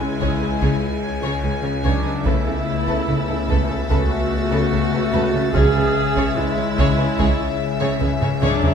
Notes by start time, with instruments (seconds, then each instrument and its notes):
Already playing: synth drone C#2, harp C#3 C#4, clarinet G#3, french horn section G#3 C#5, viola section E4, violin section G#5
0.20 double bass section C#2, cello section C#3, harp C#3, violin section G#4 C#5, taiko
0.40 cello section C#3, violin section G#4 B4
0.61 double bass section C#2, cello section C#3, harp C#3, violin section G#4 C#5, taiko
1.03 harp C#4
1.22 cello section C#3, violin section G#4 C#5
1.43 double bass section C#2, cello section C#3, harp C#3, violin section G#4 B4
1.63 cello section C#3, violin section G#4 C#5
1.83 double bass section C#2, cello section C#3, clarinet F#3, harp C#4, viola section D4, violin section G#4 C#5
2.03 cello section C#3, violin section G#4 B4
2.25 double bass section C#2, synth drone C#2, cello section C#3, harp C#3, clarinet A3, french horn section A3 B3, viola section E4, violin section A4 B4 E5 E6 A6, taiko
2.46 cello section C#3, violin section A4
2.67 harp C#3
2.87 cello section C#3, violin section A4 B4, taiko
3.08 double bass section C#2, cello section C#3, harp C#3, violin section A4
3.28 cello section C#3, violin section A4 B4
3.48 double bass section C#2, cello section C#3, harp C#3, violin section A4 B4, taiko
3.68 cello section C#3, violin section A4
3.89 double bass section C#2, cello section C#3, harp C#3, clarinet A3, viola section F#4, violin section A4 B4, taiko
4.31 harp C#4
4.51 cello section C#3, violin section A4 B4
4.72 double bass section C#2, harp C#3, cello section C#3, violin section A4
4.93 cello section C#3, violin section A4 B4
5.13 double bass section C#2, cello section C#3, harp C#4, violin section A4 B4
5.34 cello section C#3, violin section A4
5.53 double bass section C#2, synth drone C#2, cello section C#3, harp C#3, timpani C#3, french horn section G#3 C#5, clarinet C#4, viola section G#4, violin section G#4 C#5 E5, taiko
5.75 cello section C#3, violin section G#4 B4
5.96 harp C#3
6.16 cello section C#3, violin section G#4 C#5, taiko
6.36 double bass section C#2, harp C#3, cello section C#3, clarinet G#3, viola section E4, violin section G#4 B4
6.57 cello section C#3, violin section G#4 C#5
6.77 double bass section C#2, harp C#3, cello section C#3, violin section G#4 C#5, taiko
6.98 cello section C#3, violin section G#4 B4
7.18 double bass section C#2, harp C#3, cello section C#3, violin section G#4 C#5, taiko
7.59 harp C#4
7.80 cello section C#3, violin section G#4 C#5
8.00 double bass section C#2, harp C#3, cello section C#3, violin section G#4 B4, taiko mid
8.21 cello section C#3, violin section G#4 C#5, taiko low-mid
8.41 double bass section C#2, cello section C#3, clarinet F#3, harp C#4, viola section D4, violin section G#4 C#5, taiko low-mid
8.63 cello section C#3, violin section G#4 B4, taiko low